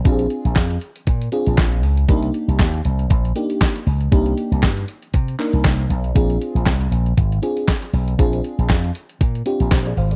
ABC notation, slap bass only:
X:1
M:4/4
L:1/16
Q:"Swing 16ths" 1/4=118
K:Bbmix
V:1 name="Slap bass" clef=bass
B,,,2 z B,,, F,,2 z2 B,,2 z B,,, B,,,2 _D,,2 | C,,2 z C,, E,,2 C,,2 B,,,2 z4 _D,,2 | C,,2 z C,, G,,2 z2 C,2 z C,, C,,2 =B,,,2 | B,,,2 z B,,, C,,2 B,,,2 A,,,2 z4 =B,,,2 |
B,,,2 z B,,, F,,2 z2 B,,2 z B,,, B,,,2 A,,,2 |]